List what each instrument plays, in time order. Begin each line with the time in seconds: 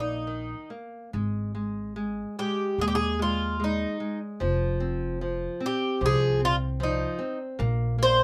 Already playing: upright bass A#1, nylon-string guitar A#3
0.00 bouzouki D#4
0.27 nylon-string guitar D#3
0.70 nylon-string guitar A#3
1.13 upright bass G#1, nylon-string guitar G#3
1.55 nylon-string guitar G#3
1.96 nylon-string guitar G#3
2.39 nylon-string guitar G#3, bouzouki G4
2.78 upright bass D#2, nylon-string guitar G#3, bouzouki G#4
2.88 bouzouki G4
2.95 bouzouki G#4
3.19 nylon-string guitar G#3, bouzouki F4
3.60 nylon-string guitar G#3
3.64 bouzouki D#4
4.00 nylon-string guitar G#3
4.40 upright bass F1, nylon-string guitar F3
4.80 nylon-string guitar C4
5.21 nylon-string guitar F3
5.60 nylon-string guitar C4
5.66 bouzouki G4
6.01 upright bass C2, nylon-string guitar F3
6.06 bouzouki G#4
6.40 nylon-string guitar C4
6.45 bouzouki F4
6.80 nylon-string guitar F3, bouzouki D#4
7.19 nylon-string guitar C4
7.59 upright bass A#1, nylon-string guitar A#3
7.98 nylon-string guitar A#3
8.03 bouzouki C5